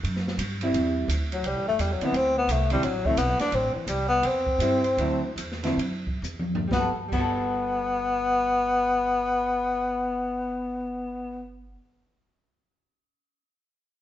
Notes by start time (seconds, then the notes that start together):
0.03 F#2, ride
0.16 snare
0.28 snare
0.38 G2, hi-hat pedal, ride
0.61 G3 C4 E4, ride
0.73 E2, ride
1.08 D2, hi-hat pedal, ride
1.32 F#3, ride
1.43 C2 G3, ride
1.56 A1
1.67 G1 A3
1.79 E2 G3, hi-hat pedal, ride
1.92 F#3
2.01 D3 F#3 B3 C4 E4, muted upright bass stroke, ride
2.12 D2 C4, ride
2.38 B3
2.48 C2, hi-hat pedal, ride
2.52 A3
2.70 D3 F#3 G3 C4 E4, ride
2.82 A1 F#3, ride
3.05 D3 F#3 A3 C4 E4, kick
3.17 B1 B3, hi-hat pedal, ride
3.39 D4, snare, ride
3.52 A1 C4, ride
3.75 E3, muted upright bass stroke
3.87 C2 G3, hi-hat pedal, ride
4.09 B3
4.22 E2, ride
4.26 C4
4.47 kick
4.58 G2 G3 C4 E4, hi-hat pedal, ride
4.84 ride
4.97 D2 D3 F#3 C4 E4, ride
5.36 E2, hi-hat pedal, ride
5.52 snare
5.63 D3 F#3 C4 E4, snare, ride
5.77 F#2, ride
6.07 kick
6.22 E2, hi-hat pedal
6.39 high tom
6.55 floor tom
6.68 G1 G3, kick, snare
6.72 B3 F#4
6.79 A4
7.08 G1 G3, kick
7.12 B3, crash
7.17 F#4 A4